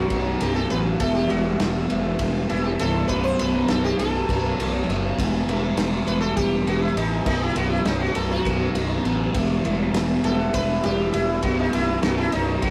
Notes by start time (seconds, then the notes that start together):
Already playing: F#2 B2 F#3 B3 D#4 F#4
0.10 B0, kick, ride
0.40 B0 F#2 B2 F#3 D#4 G4, snare, ride
0.55 B2 F#3 D#4 A4
0.70 A1 B1 F#2 B2 F#3 D#4 B4, ride
1.00 E1 E2 B2 E3 G3 B3 E4 A4, kick, ride
1.15 G4
1.29 E1 E3 G3 B3 E4 F#4, ride
1.45 E3 G3 B3 E4
1.60 E1 E2 B2 E3 G3 B3 E4, snare, ride
1.75 E3 G3 B3 E4
1.89 E1 E3 G3 B3 E4, ride
2.04 E3 G3 B3 E4
2.19 E1, kick, ride
2.48 E1 E3 G3 B3 E4, ride
2.64 E3 G3 B3 E4 G4
2.79 C1 E2 B2 E3 G3 B3 E4 A4, ride
3.08 B0 B1 F#2 B2 F#3 D#4 B4, kick, ride
3.23 C5
3.39 B0 F#2 B2 F#3 D#4 B4, ride
3.54 B2 F#3 D#4
3.68 B0 B1 F#2 B2 F#3 D#4 A4, snare, ride
3.84 B2 F#3 D#4 G4
3.98 B0 F#2 B2 F#3 D#4 A4, ride
4.14 B2 F#3 D#4
4.29 B0, kick, snare, ride
4.58 B0 F#2 B2 F#3 D#4, ride
4.74 B2 F#3 D#4
4.88 F#1 B1 F#2 B2 F#3 D#4, snare, ride
5.19 E1 E2 B2 E3 G3 B3 E4, kick, ride
5.47 E1 E3 G3 B3 E4, ride
5.63 E3 G3 B3 E4
5.76 E1 E2 B2 E3 G3 B3 E4, snare, ride
5.92 E3 G3 B3 E4
6.06 E1 E3 G3 B3 E4 B4, ride
6.21 E3 G3 B3 E4 A4
6.36 E1 G4, kick, ride
6.66 E1 E3 G3 B3 E4 F#4, ride
6.81 E3 G3 B3 E4
6.96 A1 E2 B2 E3 G3 B3 D#4 E4, ride
7.25 B0 B1 F#2 B2 F#3 D#4, kick, crash
7.43 E4
7.55 B0 F#2 B2 F#3 D#4 F#4, ride
7.70 B2 F#3 D#4 E4
7.84 B0 B1 F#2 B2 F#3 D#4, snare, ride
7.98 B2 F#3 D#4 F#4
8.13 B0 F#2 B2 F#3 D#4 A4, ride
8.28 B2 F#3 D#4 F#4
8.45 B0, kick, snare, ride
8.74 B0 F#2 B2 F#3 D#4, ride
8.90 B2 F#3 D#4
9.04 A1 B1 F#2 B2 F#3 D#4, ride
9.33 E1 E2 B2 E3 G3 B3 E4, kick, ride
9.64 E1 E3 G3 B3 E4, ride
9.78 E3 G3 B3 E4
9.93 E1 E2 B2 E3 G3 B3 E4, snare, ride
10.09 E3 G3 B3 E4
10.22 E1 E3 G3 B3 E4 A4, ride
10.38 E3 G3 B3 E4
10.53 E1 B4, kick, ride
10.84 E1 E3 G3 B3 E4 G4, ride
10.99 E3 G3 B3 E4
11.12 E1 E2 B2 E3 G3 B3 E4, ride
11.42 B0 B1 F#2 B2 F#3 D#4 F#4, kick, ride
11.59 D#4
11.73 B0 F#2 B2 F#3 D#4 E4, ride
11.88 B2 F#3 D#4
12.02 B0 B1 F#2 B2 F#3 D#4 F#4, snare, ride
12.17 B2 F#3 D#4 E4
12.31 B0 F#2 B2 F#3 D#4, ride
12.46 B2 F#3 D#4
12.62 B0 F#4, kick, snare, ride